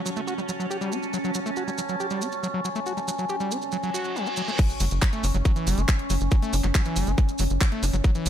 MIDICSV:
0, 0, Header, 1, 8, 480
1, 0, Start_track
1, 0, Tempo, 431655
1, 1263, Time_signature, 4, 2, 24, 8
1, 9223, End_track
2, 0, Start_track
2, 0, Title_t, "Ambient pad"
2, 0, Program_c, 0, 92
2, 0, Note_on_c, 0, 61, 82
2, 0, Note_on_c, 0, 66, 85
2, 0, Note_on_c, 0, 81, 80
2, 5103, Note_off_c, 0, 61, 0
2, 5103, Note_off_c, 0, 66, 0
2, 5127, Note_off_c, 0, 81, 0
2, 9223, End_track
3, 0, Start_track
3, 0, Title_t, "Synth drone"
3, 0, Program_c, 1, 95
3, 0, Note_on_c, 1, 61, 81
3, 5090, Note_off_c, 1, 61, 0
3, 5104, Note_on_c, 1, 61, 84
3, 9223, Note_off_c, 1, 61, 0
3, 9223, End_track
4, 0, Start_track
4, 0, Title_t, "Acid bass"
4, 0, Program_c, 2, 38
4, 63, Note_on_c, 2, 54, 75
4, 113, Note_off_c, 2, 54, 0
4, 183, Note_on_c, 2, 57, 102
4, 233, Note_off_c, 2, 57, 0
4, 303, Note_on_c, 2, 66, 84
4, 378, Note_off_c, 2, 66, 0
4, 423, Note_on_c, 2, 55, 76
4, 453, Note_off_c, 2, 55, 0
4, 543, Note_on_c, 2, 54, 77
4, 573, Note_off_c, 2, 54, 0
4, 663, Note_on_c, 2, 54, 74
4, 738, Note_off_c, 2, 54, 0
4, 783, Note_on_c, 2, 67, 85
4, 858, Note_off_c, 2, 67, 0
4, 903, Note_on_c, 2, 55, 105
4, 1023, Note_on_c, 2, 61, 74
4, 1039, Note_off_c, 2, 55, 0
4, 1098, Note_off_c, 2, 61, 0
4, 1263, Note_on_c, 2, 54, 102
4, 1313, Note_off_c, 2, 54, 0
4, 1383, Note_on_c, 2, 54, 102
4, 1458, Note_off_c, 2, 54, 0
4, 1503, Note_on_c, 2, 54, 77
4, 1553, Note_off_c, 2, 54, 0
4, 1623, Note_on_c, 2, 57, 100
4, 1673, Note_off_c, 2, 57, 0
4, 1744, Note_on_c, 2, 66, 78
4, 1818, Note_off_c, 2, 66, 0
4, 1863, Note_on_c, 2, 55, 74
4, 1893, Note_off_c, 2, 55, 0
4, 1983, Note_on_c, 2, 54, 77
4, 2013, Note_off_c, 2, 54, 0
4, 2103, Note_on_c, 2, 54, 80
4, 2178, Note_off_c, 2, 54, 0
4, 2223, Note_on_c, 2, 67, 83
4, 2298, Note_off_c, 2, 67, 0
4, 2343, Note_on_c, 2, 55, 99
4, 2463, Note_on_c, 2, 61, 76
4, 2480, Note_off_c, 2, 55, 0
4, 2538, Note_off_c, 2, 61, 0
4, 2703, Note_on_c, 2, 54, 99
4, 2753, Note_off_c, 2, 54, 0
4, 2823, Note_on_c, 2, 54, 102
4, 2898, Note_off_c, 2, 54, 0
4, 2944, Note_on_c, 2, 54, 74
4, 2994, Note_off_c, 2, 54, 0
4, 3063, Note_on_c, 2, 57, 98
4, 3113, Note_off_c, 2, 57, 0
4, 3184, Note_on_c, 2, 66, 82
4, 3258, Note_off_c, 2, 66, 0
4, 3304, Note_on_c, 2, 55, 76
4, 3334, Note_off_c, 2, 55, 0
4, 3424, Note_on_c, 2, 54, 78
4, 3453, Note_off_c, 2, 54, 0
4, 3543, Note_on_c, 2, 54, 79
4, 3618, Note_off_c, 2, 54, 0
4, 3663, Note_on_c, 2, 67, 80
4, 3738, Note_off_c, 2, 67, 0
4, 3783, Note_on_c, 2, 55, 94
4, 3903, Note_on_c, 2, 61, 74
4, 3920, Note_off_c, 2, 55, 0
4, 3978, Note_off_c, 2, 61, 0
4, 4143, Note_on_c, 2, 54, 101
4, 4193, Note_off_c, 2, 54, 0
4, 4263, Note_on_c, 2, 54, 101
4, 4338, Note_off_c, 2, 54, 0
4, 4383, Note_on_c, 2, 66, 76
4, 4623, Note_on_c, 2, 54, 81
4, 4640, Note_off_c, 2, 66, 0
4, 4743, Note_on_c, 2, 66, 105
4, 4760, Note_off_c, 2, 54, 0
4, 4773, Note_off_c, 2, 66, 0
4, 4864, Note_on_c, 2, 54, 77
4, 4913, Note_off_c, 2, 54, 0
4, 4983, Note_on_c, 2, 57, 76
4, 5013, Note_off_c, 2, 57, 0
4, 5104, Note_on_c, 2, 54, 106
4, 5133, Note_off_c, 2, 54, 0
4, 5343, Note_on_c, 2, 54, 80
4, 5393, Note_off_c, 2, 54, 0
4, 5584, Note_on_c, 2, 54, 98
4, 5634, Note_off_c, 2, 54, 0
4, 5704, Note_on_c, 2, 57, 98
4, 5824, Note_on_c, 2, 66, 103
4, 5840, Note_off_c, 2, 57, 0
4, 5854, Note_off_c, 2, 66, 0
4, 5943, Note_on_c, 2, 54, 104
4, 5973, Note_off_c, 2, 54, 0
4, 6064, Note_on_c, 2, 54, 88
4, 6139, Note_off_c, 2, 54, 0
4, 6183, Note_on_c, 2, 52, 80
4, 6303, Note_on_c, 2, 55, 102
4, 6320, Note_off_c, 2, 52, 0
4, 6424, Note_on_c, 2, 57, 80
4, 6440, Note_off_c, 2, 55, 0
4, 6474, Note_off_c, 2, 57, 0
4, 6544, Note_on_c, 2, 54, 103
4, 6573, Note_off_c, 2, 54, 0
4, 6784, Note_on_c, 2, 54, 78
4, 6833, Note_off_c, 2, 54, 0
4, 7023, Note_on_c, 2, 54, 101
4, 7073, Note_off_c, 2, 54, 0
4, 7143, Note_on_c, 2, 57, 106
4, 7264, Note_on_c, 2, 66, 104
4, 7280, Note_off_c, 2, 57, 0
4, 7293, Note_off_c, 2, 66, 0
4, 7384, Note_on_c, 2, 54, 105
4, 7413, Note_off_c, 2, 54, 0
4, 7504, Note_on_c, 2, 54, 80
4, 7579, Note_off_c, 2, 54, 0
4, 7624, Note_on_c, 2, 52, 72
4, 7744, Note_on_c, 2, 55, 105
4, 7761, Note_off_c, 2, 52, 0
4, 7864, Note_on_c, 2, 57, 81
4, 7880, Note_off_c, 2, 55, 0
4, 7913, Note_off_c, 2, 57, 0
4, 7984, Note_on_c, 2, 54, 102
4, 8014, Note_off_c, 2, 54, 0
4, 8224, Note_on_c, 2, 54, 79
4, 8273, Note_off_c, 2, 54, 0
4, 8464, Note_on_c, 2, 54, 99
4, 8514, Note_off_c, 2, 54, 0
4, 8584, Note_on_c, 2, 57, 110
4, 8704, Note_on_c, 2, 66, 103
4, 8720, Note_off_c, 2, 57, 0
4, 8733, Note_off_c, 2, 66, 0
4, 8824, Note_on_c, 2, 54, 104
4, 8854, Note_off_c, 2, 54, 0
4, 8943, Note_on_c, 2, 54, 82
4, 9018, Note_off_c, 2, 54, 0
4, 9063, Note_on_c, 2, 52, 80
4, 9183, Note_on_c, 2, 55, 109
4, 9200, Note_off_c, 2, 52, 0
4, 9223, Note_off_c, 2, 55, 0
4, 9223, End_track
5, 0, Start_track
5, 0, Title_t, "Analog synth bass"
5, 0, Program_c, 3, 38
5, 5344, Note_on_c, 3, 30, 97
5, 5429, Note_off_c, 3, 30, 0
5, 5463, Note_on_c, 3, 30, 82
5, 5549, Note_off_c, 3, 30, 0
5, 5824, Note_on_c, 3, 30, 92
5, 5909, Note_off_c, 3, 30, 0
5, 5943, Note_on_c, 3, 30, 83
5, 6029, Note_off_c, 3, 30, 0
5, 6304, Note_on_c, 3, 30, 97
5, 6389, Note_off_c, 3, 30, 0
5, 6423, Note_on_c, 3, 30, 83
5, 6509, Note_off_c, 3, 30, 0
5, 6784, Note_on_c, 3, 30, 94
5, 6869, Note_off_c, 3, 30, 0
5, 6903, Note_on_c, 3, 30, 82
5, 6989, Note_off_c, 3, 30, 0
5, 7263, Note_on_c, 3, 30, 98
5, 7349, Note_off_c, 3, 30, 0
5, 7384, Note_on_c, 3, 30, 82
5, 7469, Note_off_c, 3, 30, 0
5, 7744, Note_on_c, 3, 30, 93
5, 7829, Note_off_c, 3, 30, 0
5, 7864, Note_on_c, 3, 30, 80
5, 7949, Note_off_c, 3, 30, 0
5, 8223, Note_on_c, 3, 30, 95
5, 8309, Note_off_c, 3, 30, 0
5, 8344, Note_on_c, 3, 30, 81
5, 8429, Note_off_c, 3, 30, 0
5, 8703, Note_on_c, 3, 30, 98
5, 8789, Note_off_c, 3, 30, 0
5, 8823, Note_on_c, 3, 30, 85
5, 8909, Note_off_c, 3, 30, 0
5, 9184, Note_on_c, 3, 30, 100
5, 9223, Note_off_c, 3, 30, 0
5, 9223, End_track
6, 0, Start_track
6, 0, Title_t, "Impact"
6, 0, Program_c, 4, 103
6, 5103, Note_on_c, 4, 60, 75
6, 7023, Note_off_c, 4, 60, 0
6, 9223, End_track
7, 0, Start_track
7, 0, Title_t, "Reverse cymbal"
7, 0, Program_c, 5, 119
7, 4143, Note_on_c, 5, 60, 77
7, 5103, Note_off_c, 5, 60, 0
7, 9223, End_track
8, 0, Start_track
8, 0, Title_t, "Drums"
8, 66, Note_on_c, 9, 70, 91
8, 177, Note_off_c, 9, 70, 0
8, 182, Note_on_c, 9, 70, 40
8, 293, Note_off_c, 9, 70, 0
8, 307, Note_on_c, 9, 70, 48
8, 418, Note_off_c, 9, 70, 0
8, 428, Note_on_c, 9, 70, 33
8, 539, Note_off_c, 9, 70, 0
8, 542, Note_on_c, 9, 70, 88
8, 653, Note_off_c, 9, 70, 0
8, 669, Note_on_c, 9, 70, 35
8, 781, Note_off_c, 9, 70, 0
8, 789, Note_on_c, 9, 70, 48
8, 900, Note_off_c, 9, 70, 0
8, 904, Note_on_c, 9, 70, 35
8, 1015, Note_off_c, 9, 70, 0
8, 1025, Note_on_c, 9, 70, 83
8, 1137, Note_off_c, 9, 70, 0
8, 1142, Note_on_c, 9, 70, 36
8, 1253, Note_off_c, 9, 70, 0
8, 1261, Note_on_c, 9, 70, 52
8, 1373, Note_off_c, 9, 70, 0
8, 1385, Note_on_c, 9, 70, 37
8, 1495, Note_off_c, 9, 70, 0
8, 1495, Note_on_c, 9, 70, 90
8, 1607, Note_off_c, 9, 70, 0
8, 1627, Note_on_c, 9, 70, 41
8, 1738, Note_off_c, 9, 70, 0
8, 1739, Note_on_c, 9, 70, 45
8, 1850, Note_off_c, 9, 70, 0
8, 1867, Note_on_c, 9, 70, 34
8, 1979, Note_off_c, 9, 70, 0
8, 1981, Note_on_c, 9, 70, 93
8, 2092, Note_off_c, 9, 70, 0
8, 2100, Note_on_c, 9, 70, 38
8, 2211, Note_off_c, 9, 70, 0
8, 2225, Note_on_c, 9, 70, 52
8, 2336, Note_off_c, 9, 70, 0
8, 2339, Note_on_c, 9, 70, 37
8, 2451, Note_off_c, 9, 70, 0
8, 2465, Note_on_c, 9, 70, 89
8, 2576, Note_off_c, 9, 70, 0
8, 2580, Note_on_c, 9, 70, 37
8, 2691, Note_off_c, 9, 70, 0
8, 2708, Note_on_c, 9, 70, 50
8, 2819, Note_off_c, 9, 70, 0
8, 2945, Note_on_c, 9, 70, 79
8, 3056, Note_off_c, 9, 70, 0
8, 3063, Note_on_c, 9, 70, 35
8, 3174, Note_off_c, 9, 70, 0
8, 3183, Note_on_c, 9, 70, 51
8, 3294, Note_off_c, 9, 70, 0
8, 3307, Note_on_c, 9, 70, 35
8, 3418, Note_off_c, 9, 70, 0
8, 3424, Note_on_c, 9, 70, 94
8, 3536, Note_off_c, 9, 70, 0
8, 3542, Note_on_c, 9, 70, 40
8, 3653, Note_off_c, 9, 70, 0
8, 3660, Note_on_c, 9, 70, 51
8, 3771, Note_off_c, 9, 70, 0
8, 3782, Note_on_c, 9, 70, 38
8, 3894, Note_off_c, 9, 70, 0
8, 3909, Note_on_c, 9, 70, 82
8, 4020, Note_off_c, 9, 70, 0
8, 4024, Note_on_c, 9, 70, 35
8, 4135, Note_off_c, 9, 70, 0
8, 4135, Note_on_c, 9, 70, 52
8, 4246, Note_off_c, 9, 70, 0
8, 4261, Note_on_c, 9, 70, 34
8, 4372, Note_off_c, 9, 70, 0
8, 4388, Note_on_c, 9, 70, 82
8, 4497, Note_off_c, 9, 70, 0
8, 4497, Note_on_c, 9, 70, 36
8, 4609, Note_off_c, 9, 70, 0
8, 4629, Note_on_c, 9, 70, 48
8, 4740, Note_off_c, 9, 70, 0
8, 4741, Note_on_c, 9, 70, 34
8, 4852, Note_off_c, 9, 70, 0
8, 4856, Note_on_c, 9, 70, 85
8, 4967, Note_off_c, 9, 70, 0
8, 4985, Note_on_c, 9, 70, 34
8, 5096, Note_off_c, 9, 70, 0
8, 5100, Note_on_c, 9, 70, 56
8, 5103, Note_on_c, 9, 36, 123
8, 5103, Note_on_c, 9, 42, 69
8, 5103, Note_on_c, 9, 49, 104
8, 5212, Note_off_c, 9, 70, 0
8, 5215, Note_off_c, 9, 36, 0
8, 5215, Note_off_c, 9, 42, 0
8, 5215, Note_off_c, 9, 49, 0
8, 5223, Note_on_c, 9, 42, 41
8, 5228, Note_on_c, 9, 70, 38
8, 5335, Note_off_c, 9, 42, 0
8, 5337, Note_off_c, 9, 70, 0
8, 5337, Note_on_c, 9, 70, 93
8, 5343, Note_on_c, 9, 46, 109
8, 5449, Note_off_c, 9, 70, 0
8, 5455, Note_off_c, 9, 46, 0
8, 5463, Note_on_c, 9, 42, 42
8, 5463, Note_on_c, 9, 70, 39
8, 5574, Note_off_c, 9, 42, 0
8, 5574, Note_off_c, 9, 70, 0
8, 5583, Note_on_c, 9, 36, 120
8, 5583, Note_on_c, 9, 39, 127
8, 5583, Note_on_c, 9, 42, 70
8, 5584, Note_on_c, 9, 70, 58
8, 5695, Note_off_c, 9, 36, 0
8, 5695, Note_off_c, 9, 39, 0
8, 5695, Note_off_c, 9, 42, 0
8, 5695, Note_off_c, 9, 70, 0
8, 5704, Note_on_c, 9, 42, 43
8, 5704, Note_on_c, 9, 70, 37
8, 5815, Note_off_c, 9, 42, 0
8, 5815, Note_off_c, 9, 70, 0
8, 5822, Note_on_c, 9, 70, 88
8, 5824, Note_on_c, 9, 46, 98
8, 5933, Note_off_c, 9, 70, 0
8, 5935, Note_off_c, 9, 46, 0
8, 5944, Note_on_c, 9, 42, 43
8, 5944, Note_on_c, 9, 70, 39
8, 6055, Note_off_c, 9, 42, 0
8, 6055, Note_off_c, 9, 70, 0
8, 6061, Note_on_c, 9, 70, 58
8, 6063, Note_on_c, 9, 36, 122
8, 6064, Note_on_c, 9, 42, 69
8, 6172, Note_off_c, 9, 70, 0
8, 6175, Note_off_c, 9, 36, 0
8, 6175, Note_off_c, 9, 42, 0
8, 6183, Note_on_c, 9, 42, 43
8, 6185, Note_on_c, 9, 70, 39
8, 6295, Note_off_c, 9, 42, 0
8, 6296, Note_off_c, 9, 70, 0
8, 6303, Note_on_c, 9, 46, 105
8, 6308, Note_on_c, 9, 70, 97
8, 6414, Note_off_c, 9, 46, 0
8, 6419, Note_off_c, 9, 70, 0
8, 6424, Note_on_c, 9, 42, 40
8, 6432, Note_on_c, 9, 70, 39
8, 6535, Note_off_c, 9, 42, 0
8, 6540, Note_off_c, 9, 70, 0
8, 6540, Note_on_c, 9, 70, 57
8, 6543, Note_on_c, 9, 36, 123
8, 6544, Note_on_c, 9, 39, 127
8, 6544, Note_on_c, 9, 42, 72
8, 6651, Note_off_c, 9, 70, 0
8, 6655, Note_off_c, 9, 36, 0
8, 6655, Note_off_c, 9, 39, 0
8, 6655, Note_off_c, 9, 42, 0
8, 6664, Note_on_c, 9, 42, 40
8, 6775, Note_off_c, 9, 42, 0
8, 6782, Note_on_c, 9, 70, 87
8, 6784, Note_on_c, 9, 46, 89
8, 6893, Note_off_c, 9, 70, 0
8, 6895, Note_off_c, 9, 46, 0
8, 6904, Note_on_c, 9, 42, 40
8, 6904, Note_on_c, 9, 70, 36
8, 7015, Note_off_c, 9, 42, 0
8, 7015, Note_off_c, 9, 70, 0
8, 7018, Note_on_c, 9, 70, 53
8, 7023, Note_on_c, 9, 36, 126
8, 7024, Note_on_c, 9, 42, 68
8, 7130, Note_off_c, 9, 70, 0
8, 7135, Note_off_c, 9, 36, 0
8, 7135, Note_off_c, 9, 42, 0
8, 7144, Note_on_c, 9, 42, 41
8, 7155, Note_on_c, 9, 70, 39
8, 7255, Note_off_c, 9, 42, 0
8, 7263, Note_off_c, 9, 70, 0
8, 7263, Note_on_c, 9, 46, 112
8, 7263, Note_on_c, 9, 70, 102
8, 7374, Note_off_c, 9, 70, 0
8, 7375, Note_off_c, 9, 46, 0
8, 7376, Note_on_c, 9, 70, 43
8, 7384, Note_on_c, 9, 39, 41
8, 7384, Note_on_c, 9, 42, 42
8, 7487, Note_off_c, 9, 70, 0
8, 7495, Note_off_c, 9, 39, 0
8, 7495, Note_off_c, 9, 42, 0
8, 7503, Note_on_c, 9, 36, 122
8, 7503, Note_on_c, 9, 39, 127
8, 7503, Note_on_c, 9, 42, 68
8, 7506, Note_on_c, 9, 70, 58
8, 7615, Note_off_c, 9, 36, 0
8, 7615, Note_off_c, 9, 39, 0
8, 7615, Note_off_c, 9, 42, 0
8, 7618, Note_off_c, 9, 70, 0
8, 7618, Note_on_c, 9, 70, 36
8, 7624, Note_on_c, 9, 42, 42
8, 7729, Note_off_c, 9, 70, 0
8, 7735, Note_off_c, 9, 42, 0
8, 7742, Note_on_c, 9, 70, 98
8, 7743, Note_on_c, 9, 46, 100
8, 7853, Note_off_c, 9, 70, 0
8, 7854, Note_off_c, 9, 46, 0
8, 7863, Note_on_c, 9, 42, 41
8, 7868, Note_on_c, 9, 70, 44
8, 7974, Note_off_c, 9, 42, 0
8, 7979, Note_off_c, 9, 70, 0
8, 7983, Note_on_c, 9, 36, 122
8, 7983, Note_on_c, 9, 42, 69
8, 7983, Note_on_c, 9, 70, 57
8, 8094, Note_off_c, 9, 42, 0
8, 8094, Note_off_c, 9, 70, 0
8, 8095, Note_off_c, 9, 36, 0
8, 8102, Note_on_c, 9, 70, 36
8, 8103, Note_on_c, 9, 42, 40
8, 8212, Note_off_c, 9, 70, 0
8, 8212, Note_on_c, 9, 70, 98
8, 8214, Note_off_c, 9, 42, 0
8, 8223, Note_on_c, 9, 46, 109
8, 8323, Note_off_c, 9, 70, 0
8, 8335, Note_off_c, 9, 46, 0
8, 8341, Note_on_c, 9, 70, 39
8, 8343, Note_on_c, 9, 42, 41
8, 8453, Note_off_c, 9, 70, 0
8, 8455, Note_off_c, 9, 42, 0
8, 8458, Note_on_c, 9, 70, 58
8, 8463, Note_on_c, 9, 36, 124
8, 8464, Note_on_c, 9, 39, 127
8, 8464, Note_on_c, 9, 42, 70
8, 8569, Note_off_c, 9, 70, 0
8, 8575, Note_off_c, 9, 36, 0
8, 8575, Note_off_c, 9, 39, 0
8, 8575, Note_off_c, 9, 42, 0
8, 8584, Note_on_c, 9, 42, 40
8, 8695, Note_off_c, 9, 42, 0
8, 8703, Note_on_c, 9, 46, 95
8, 8707, Note_on_c, 9, 70, 96
8, 8815, Note_off_c, 9, 46, 0
8, 8818, Note_off_c, 9, 70, 0
8, 8823, Note_on_c, 9, 42, 39
8, 8828, Note_on_c, 9, 70, 45
8, 8935, Note_off_c, 9, 42, 0
8, 8939, Note_off_c, 9, 70, 0
8, 8943, Note_on_c, 9, 36, 125
8, 8943, Note_on_c, 9, 42, 65
8, 8943, Note_on_c, 9, 70, 56
8, 9054, Note_off_c, 9, 42, 0
8, 9054, Note_off_c, 9, 70, 0
8, 9055, Note_off_c, 9, 36, 0
8, 9063, Note_on_c, 9, 42, 38
8, 9063, Note_on_c, 9, 70, 39
8, 9174, Note_off_c, 9, 42, 0
8, 9174, Note_off_c, 9, 70, 0
8, 9183, Note_on_c, 9, 46, 110
8, 9185, Note_on_c, 9, 70, 100
8, 9223, Note_off_c, 9, 46, 0
8, 9223, Note_off_c, 9, 70, 0
8, 9223, End_track
0, 0, End_of_file